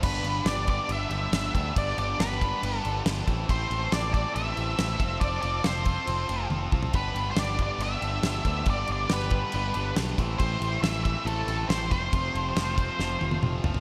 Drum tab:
CC |x-x-x-x-x-x-x-x-|x-x-x-x-x-x-x-x-|x-x-x-x-x-x-x-x-|x-x-x-x-x-x-----|
SD |----o-------o---|----o-------o---|----o-------o---|----o-----------|
T1 |----------------|----------------|----------------|------------o---|
T2 |----------------|----------------|----------------|----------------|
FT |----------------|----------------|----------------|---------------o|
BD |o-----o-------o-|o-----o-------o-|o-----o-------o-|o-----o-------o-|

CC |x-x-x-x-x-x-x-x-|x-x-x-x-x-x-x-x-|x-x-x-x-x-x-x-x-|x-x-x-x---------|
SD |----o-------o---|----o-------o---|----o-------o---|----o---o-------|
T1 |----------------|----------------|----------------|----------oo----|
T2 |----------------|----------------|----------------|------------o---|
FT |----------------|----------------|----------------|--------------oo|
BD |o-----o-------o-|o-----o-------o-|o-----o-------o-|o-----o---------|